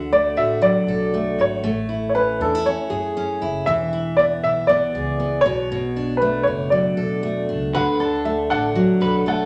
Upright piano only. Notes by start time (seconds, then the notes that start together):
Already playing: E5
0.13 D5
0.37 E5
0.62 D5
1.41 C#5
2.09 C#5
2.15 B4
2.42 A4
2.66 C#5
3.66 E5
4.17 D5
4.44 E5
4.67 D5
5.41 C#5
6.17 B4
6.43 C#5
6.70 D5
7.75 F#5
8.25 E5
8.50 F#5
9.28 F#5